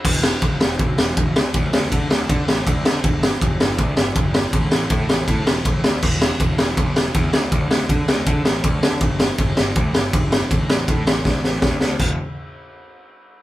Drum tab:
CC |x-------|--------|--------|--------|
RD |--x-x-x-|x-x-x-x-|x-x-x-x-|x-x-x-x-|
SD |-o-o-o-o|-o-o-o-o|-o-o-o-o|-o-o-o-o|
BD |o-o-o-o-|o-o-o-o-|o-o-o-o-|o-o-o-o-|

CC |x-------|--------|--------|--------|
RD |--x-x-x-|x-x-x-x-|x-x-x-x-|x-x-----|
SD |-o-o-o-o|-o-o-o-o|-o-o-o-o|-o-ooooo|
BD |o-o-o-o-|o-o-o-o-|o-o-o-o-|o-o-o-o-|

CC |x-------|
RD |--------|
SD |--------|
BD |o-------|